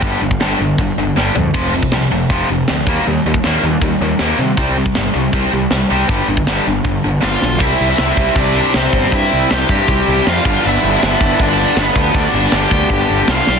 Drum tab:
CC |----------------|x---------------|----------------|----------------|
HH |o---o---o-------|----o---o---o---|o---o---o---o---|o---o---o---o---|
SD |----o-------o---|----o-------o---|----o-------o---|----o-------o---|
FT |--------------o-|----------------|----------------|----------------|
BD |o--o----o-------|o--o----o-----o-|---o----o-------|o--o----o-------|

CC |----------------|x---------------|--------------x-|----------------|
HH |o---o---o---o---|----o---o---o---|o---o---o---o---|----o---o---o---|
SD |----o-------o-o-|----o-------o---|----o-------o---|----o-------o---|
FT |----------------|----------------|----------------|----------------|
BD |o--o----o-------|o-----o-o-----o-|o-----o-o-----o-|------o-o-----o-|

CC |----------------|
HH |o---o---o---o---|
SD |----o-------o-o-|
FT |----------------|
BD |o-----o-o-------|